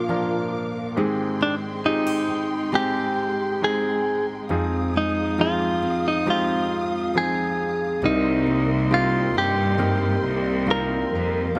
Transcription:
Already playing: A#2 F3 A#3 D4 F4 A#4 F5 D6
0.09 F3 A#3 D4 F4 A#4
0.96 G#2 D#3 G#3 C4 G4 G#4 G5
1.01 C6
1.41 C4 D4
1.85 C4 D#4 F4 G4 G#4
2.07 G4
2.28 D#4
2.72 G#3 C4 D#4 G4
3.62 G#3 C4 D#4 G#4
4.49 F2 F3 C4 D#4 G#4 F5 D#6
4.94 G#3 D#4
5.38 F3 C4 D#4 F4 G#4
5.82 C4
6.08 D#4
6.26 F3 G#3 C4 D#4 F4 G4
6.30 F4
7.14 F3 C4 D#4 F4 G#4
8.02 C2 C3 G3 C4 D#4 A#4 D#5 C6
8.46 A#3
8.90 G3 C4 D#4 F4 G4
9.34 G2 C4 G4
9.78 G3 A#3 C4 D#4 G4 A#4
10.23 C2
10.67 G3 C4 D#4 F4 G4
10.71 A#4
11.11 F2
11.55 A#2 F3 A#3

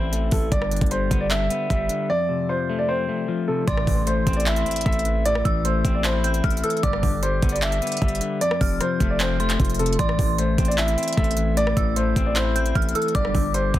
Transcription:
Already playing: A1 E3 A3 C4 E4 C5
0.12 A3, closed hi-hat
0.31 A1 E3 A4, kick, open hi-hat
0.52 G1 G2 D5, kick, closed hi-hat
0.62 cross-stick
0.71 D3, closed hi-hat
0.76 closed hi-hat
0.81 G1, kick, closed hi-hat
0.86 closed hi-hat
0.91 G3 C5, closed hi-hat
1.11 G1 B3, kick, closed hi-hat
1.21 D5
1.31 D4 E5, clap, closed hi-hat
1.50 B3, closed hi-hat
1.70 G1 G3 E5, kick, closed hi-hat
1.89 D3, closed hi-hat
2.10 F2 D5
2.29 C3
2.49 F3 C5
2.69 A3
2.79 D5
2.89 C4 C5
3.08 A3
3.28 F3
3.48 C3 A4
3.67 A1 C2 A2 E3 D5 C6, kick, closed hi-hat, impact
3.77 cross-stick
3.87 A1 E3, kick, open hi-hat
4.07 A3 C5, closed hi-hat
4.27 A1 C4, kick, closed hi-hat
4.33 D5, closed hi-hat
4.40 closed hi-hat
4.46 E4 E5, clap, closed hi-hat
4.56 closed hi-hat
4.66 C4, closed hi-hat
4.71 closed hi-hat
4.76 closed hi-hat
4.81 closed hi-hat
4.86 A1 A3 E5, kick, closed hi-hat
4.93 closed hi-hat
4.99 closed hi-hat
5.05 E3, closed hi-hat
5.25 A2 D5, closed hi-hat
5.35 cross-stick
5.45 A1 E3 E6, kick, closed hi-hat
5.65 A3 C5, closed hi-hat
5.85 A1 C4, kick, closed hi-hat
5.95 D5
6.04 E4 C5, clap, closed hi-hat
6.24 C4 G6, closed hi-hat
6.34 closed hi-hat
6.44 A1 A3 F6, kick, closed hi-hat
6.50 closed hi-hat
6.57 closed hi-hat
6.64 E3 A4 E6, closed hi-hat
6.70 closed hi-hat
6.77 closed hi-hat
6.83 G1 B1 G2 D3 D5 D6, kick, closed hi-hat
6.93 cross-stick
7.03 G1 D3, kick, open hi-hat
7.22 G3 C5, closed hi-hat
7.42 G1 B3, kick, closed hi-hat
7.49 D5, closed hi-hat
7.56 closed hi-hat
7.62 D4 E5, clap, closed hi-hat
7.72 closed hi-hat
7.82 B3, closed hi-hat
7.87 closed hi-hat
7.92 closed hi-hat
7.97 closed hi-hat
8.02 G1 G3 E5, kick, closed hi-hat
8.08 closed hi-hat
8.15 closed hi-hat
8.21 D3, closed hi-hat
8.41 F2 D5, closed hi-hat
8.51 cross-stick
8.61 F1 C3 F6, kick, open hi-hat
8.81 F3 C5, cross-stick, closed hi-hat
9.00 F1 A3, kick, closed hi-hat
9.10 D5
9.20 C4 C5, clap, closed hi-hat
9.40 A3 C6, closed hi-hat
9.50 clap, closed hi-hat
9.60 F1 F3, kick, closed hi-hat
9.65 closed hi-hat
9.70 closed hi-hat
9.74 closed hi-hat
9.79 C3 A4, closed hi-hat
9.86 closed hi-hat
9.93 closed hi-hat
9.99 A1 C2 A2 E3 D5 C6, kick, closed hi-hat
10.09 cross-stick
10.19 A1 E3, kick, open hi-hat
10.38 A3 C5, closed hi-hat
10.58 A1 C4, kick, closed hi-hat
10.65 D5, closed hi-hat
10.71 closed hi-hat
10.78 E4 E5, clap, closed hi-hat
10.88 closed hi-hat
10.97 C4, closed hi-hat
11.03 closed hi-hat
11.08 closed hi-hat
11.13 closed hi-hat
11.17 A1 A3 E5, kick, closed hi-hat
11.24 closed hi-hat
11.31 closed hi-hat
11.37 E3, closed hi-hat
11.57 A2 D5, closed hi-hat
11.67 cross-stick
11.77 A1 E3 E6, kick, closed hi-hat
11.96 A3 C5, closed hi-hat
12.16 A1 C4, kick, closed hi-hat
12.26 D5
12.36 E4 C5, clap, closed hi-hat
12.55 C4 G6, closed hi-hat
12.66 closed hi-hat
12.75 A1 A3 F6, kick, closed hi-hat
12.82 closed hi-hat
12.89 closed hi-hat
12.95 E3 A4 E6, closed hi-hat
13.02 closed hi-hat
13.08 closed hi-hat
13.15 G1 B1 G2 D3 D5 D6, kick, closed hi-hat
13.25 cross-stick
13.35 G1 D3, kick, open hi-hat
13.54 G3 C5, closed hi-hat
13.74 G1 B3, kick, closed hi-hat

